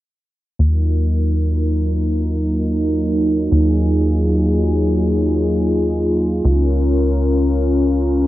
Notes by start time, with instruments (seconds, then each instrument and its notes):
0.59 analog synth bass D#2, analog synth pad F#3 A#3 D#4 F4 A#4
3.52 analog synth bass D#2, analog synth pad G#4
6.44 analog synth bass C#2, analog synth pad C#4 A#4